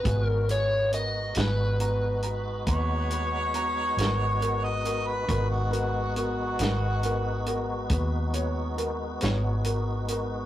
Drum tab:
HH |xxxxxxxxxxxx|xxxxxxxxxxxx|
SD |---o-----o--|---o-----o--|
BD |o-----o-----|o-----o-----|